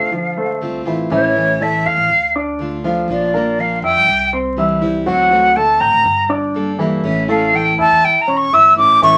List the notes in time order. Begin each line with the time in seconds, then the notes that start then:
Already playing: D3 A3 C4 F4 F5
0.12 F3 F4 F5, muted steel-string acoustic guitar stroke
0.37 A3 A4 C5
0.61 C2 D3 A3 C4 F4
0.85 A1 E3 A3 C4 E4 F4 E5
1.10 A1 E3 A3 C#4 E4 C#5 E5
1.35 A3 C#4 E4
1.60 E3 A3 C#4 E4 A4 E5 A5
1.85 E2 F5 F6
1.97 A1
2.10 D2, muted steel-string acoustic guitar stroke
2.35 D4 D5 D6
2.59 D3 A3 D4 F4
2.84 F3 A3 D4 F4 F5
3.08 A#1 F3 A#3 D4 F4 D5
3.33 A#3 D4 F4 A#4 A#5
3.59 F3 A#3 D4 F4 F5
3.82 F2 E5 G5 E6
3.95 G2
4.07 C2, muted steel-string acoustic guitar stroke
4.33 C4 C5 C6
4.57 E3 G3 C4 E4 E5 E6
4.82 E3 G3 C4 E4
5.06 D2 D3 F#3 A3 C4 F#4 F#5
5.31 A3 C4 F#4
5.56 D3 A3 C4 F#4 A4 A5
5.80 A1 G5 A#5 G6
5.93 A1
6.04 G1, muted steel-string acoustic guitar stroke
6.29 D4 D5 D6
6.54 G3 A#3 D4 A4
6.79 E3 G3 A#3 D4 E4 A4 E5
7.04 A1 E3 A3 C#4 E4 E5
7.28 A3 C#4 E4 A4 F5 A5
7.53 E3 A3 C#4 E4 G5
7.78 E2 E4 E5 A5 E6
7.90 E2
8.03 G5, muted steel-string acoustic guitar stroke
8.21 A#5
8.27 E1 C#4 C#5 C#6
8.37 C#6
8.52 G1 E3 A3 C#4 E4 E5 E6
8.77 A1 A3 C#4 E4 D6
9.02 A1 E3 A3 C#4 E4 E5 C#6